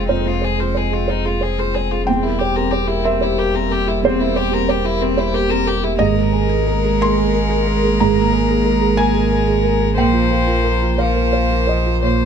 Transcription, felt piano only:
0.00 0.09 F2 medium
0.00 0.19 G#4 soft
0.00 0.09 C5 medium
0.00 0.12 F5 medium
0.00 0.12 G5 medium
0.09 2.04 F2 medium
0.09 0.40 C5 medium
0.25 0.52 C4 soft
0.42 0.69 C5 soft
0.58 0.85 G#4 soft
0.75 1.02 C5 soft
0.91 1.18 G#4 soft
1.08 1.35 C5 medium
1.25 1.52 G#4 soft
1.41 1.68 C5 soft
1.59 1.85 G#4 medium
1.76 2.01 C5 medium
1.92 2.08 G#4 soft
2.07 4.00 E2 medium
2.07 3.01 G5 loud
2.25 2.50 G4 soft
2.41 2.67 C5 medium
2.57 2.83 G4 soft
2.72 2.99 C5 medium
2.89 3.15 G4 medium
3.05 3.31 A#4 medium
3.05 4.00 E5 loud
3.21 3.48 C5 medium
3.38 3.64 A#4 medium
3.54 3.81 G4 medium
3.70 3.97 A#4 medium
3.87 4.13 G4 medium
4.03 5.95 E2 medium
4.03 4.34 C5 loud
4.20 4.46 C4 soft
4.36 4.62 C5 medium
4.51 4.78 G4 medium
4.69 4.95 C5 medium
4.85 5.11 G4 medium
5.02 5.27 A#4 medium
5.17 5.43 C5 medium
5.34 5.60 A#4 medium
5.50 5.76 G4 medium
5.67 5.93 A#4 medium
5.83 5.99 G4 medium
5.99 7.96 G#2 medium
5.99 6.97 D#5 loud
6.16 6.43 G#4 medium
6.33 6.60 A#4 medium
6.50 6.77 G#4 medium
6.67 6.94 A#4 medium
6.84 7.11 G#4 medium
7.01 7.28 A#4 medium
7.01 7.96 C6 loud
7.18 7.44 G#4 medium
7.34 7.60 A#4 medium
7.49 7.76 G#4 medium
7.67 7.93 A#4 medium
7.83 8.09 G#4 medium
8.00 9.94 G#2 medium
8.00 8.94 A#5 loud
8.16 8.42 A#3 medium
8.33 8.59 A#4 medium
8.50 8.76 G#4 medium
8.65 8.92 A#4 medium
8.81 9.08 G#4 medium
8.97 9.25 A#4 medium
8.97 9.93 G#5 loud
9.15 9.41 G#4 medium
9.32 9.58 A#4 medium
9.47 9.74 G#4 medium
9.64 9.90 A#4 medium
9.81 9.97 G#4 medium
9.97 12.00 A#2 medium
9.97 10.95 G5 loud
10.13 10.40 F4 medium
10.30 10.58 A#4 medium
10.47 10.74 F4 medium
10.64 10.92 A#4 medium
10.82 11.09 F4 medium
10.98 11.26 C5 medium
10.98 11.65 F5 medium
11.15 11.44 A#4 medium
11.33 11.61 C5 medium
11.51 11.79 F4 soft
11.67 11.96 C5 medium
11.67 12.02 D#5 medium
11.86 12.15 F4 soft
12.03 12.25 A#2 medium
12.03 12.25 C#5 medium
12.21 12.25 A#3 soft

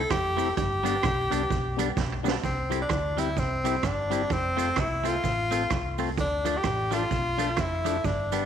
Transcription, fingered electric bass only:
0.10 0.50 F1 medium
0.57 0.97 G1 loud
1.04 1.28 B1 medium
1.32 1.48 C2 medium
1.50 1.90 B1 medium
1.97 2.37 B1 medium
2.44 2.84 C2 loud
2.90 3.38 D2 loud
3.37 3.77 C2 loud
3.83 4.23 G1 medium
4.31 4.70 F1 loud
4.77 5.17 C2 medium
5.24 5.64 A1 loud
5.71 6.17 C2 loud
6.17 6.57 D2 loud
6.65 7.04 A1 medium
7.11 7.59 B1 loud
7.58 7.97 F1 loud
8.04 8.44 G1 loud

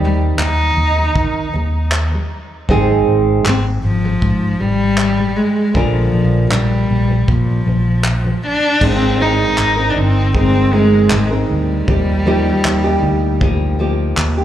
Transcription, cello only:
0.05 0.21 G3 medium
0.42 1.51 D#4 medium
3.47 3.64 C4 medium
3.84 4.61 F3 loud
4.60 5.38 G3 loud
5.36 5.76 G#3 medium
5.74 6.50 F3 medium
6.51 7.29 G3 medium
7.28 8.43 F3 medium
8.47 8.86 D4 medium
8.85 9.24 C4 loud
9.22 9.92 D#4 medium
9.90 10.00 D4 medium
9.98 10.35 C4 medium
10.36 10.76 C4 medium
10.75 11.12 G#3 medium
11.12 11.29 G#3 medium
11.51 13.76 G3 medium

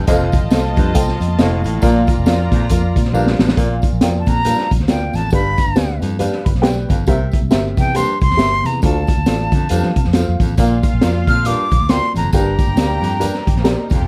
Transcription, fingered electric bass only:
0.08 0.38 F1 loud
0.42 0.50 A1 medium
0.51 0.79 C2 medium
0.78 0.93 F2 medium
0.95 1.17 C2 medium
1.20 1.36 F2 medium
1.39 1.61 F1 medium
1.64 1.80 A1 medium
1.83 2.12 A#1 loud
2.18 2.25 F1 medium
2.26 2.48 F2 medium
2.52 2.67 A#2 medium
2.70 2.92 F2 medium
2.96 3.11 A#2 medium
3.12 3.35 A#1 medium
3.40 3.55 A1 medium
3.57 3.80 A#1 loud
3.93 4.00 A#1 medium
4.02 4.24 F2 medium
4.27 4.54 A#2 loud
4.71 4.78 A#1 medium
4.79 5.09 D2 medium
5.14 5.30 A1 medium
5.33 5.55 G1 loud
5.66 5.74 G1 medium
5.77 5.98 D2 medium
6.02 6.29 G2 medium
6.46 6.54 G1 medium
6.54 6.84 B1 medium
6.90 7.05 G1 medium
7.07 7.30 C2 loud
7.42 7.50 C2 medium
7.52 7.74 G1 medium
7.78 8.04 C3 medium
8.22 8.29 C2 medium
8.31 8.38 E2 medium
8.38 8.61 G1 medium
8.64 8.80 C3 medium
8.83 9.05 D2 loud
9.17 9.25 D2 medium
9.27 9.49 A1 medium
9.52 9.68 D3 medium
9.71 9.82 F2 medium
9.84 9.95 F3 medium
9.96 10.04 C3 medium
10.07 10.25 F2 medium
10.29 10.39 F2 loud
10.40 10.55 A1 medium
10.58 10.80 A#1 loud
10.93 11.01 A#1 medium
11.03 11.25 F2 medium
11.27 11.54 A#2 medium
11.71 11.79 A#1 medium
11.80 11.99 D2 medium
12.15 12.22 A1 medium
12.23 12.31 F#1 medium
12.33 12.55 G1 loud
12.67 12.74 G1 medium
12.75 12.98 D2 medium
13.02 13.29 G2 medium
13.48 13.55 G1 medium
13.55 13.75 A#1 medium
13.91 13.99 F1 medium
14.00 14.08 E1 medium

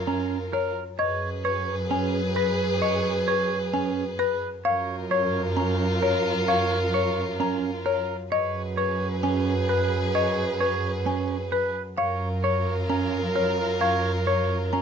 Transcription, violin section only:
0.00 0.72 F4 medium
0.00 0.72 A#4 medium
0.99 4.38 G#4 medium
0.99 4.38 B4 medium
4.65 8.05 F4 medium
4.65 8.05 A#4 medium
8.32 11.72 G#4 medium
8.32 11.72 B4 medium
11.98 14.82 F4 medium
11.98 14.82 A#4 medium

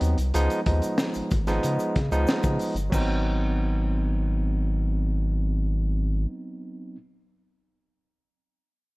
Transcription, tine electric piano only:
0.00 0.16 F#3 loud
0.00 0.16 B3 medium
0.00 0.16 C4 medium
0.00 0.17 D#4 loud
0.34 0.59 F3 loud
0.34 0.59 G#3 loud
0.34 0.60 B3 medium
0.34 0.60 D#4 loud
0.66 1.29 F3 medium
0.66 1.29 G#3 medium
0.66 1.29 B3 medium
0.66 1.30 D#4 medium
1.47 1.97 F3 loud
1.47 1.98 G#3 medium
1.47 1.98 B3 medium
1.47 1.98 D#4 loud
2.11 2.74 F3 loud
2.11 2.75 G#3 medium
2.11 2.75 B3 medium
2.11 2.75 D#4 loud
2.90 6.95 F#3 medium
2.90 6.96 B3 medium
2.90 6.97 C4 medium
2.95 6.97 D#4 medium

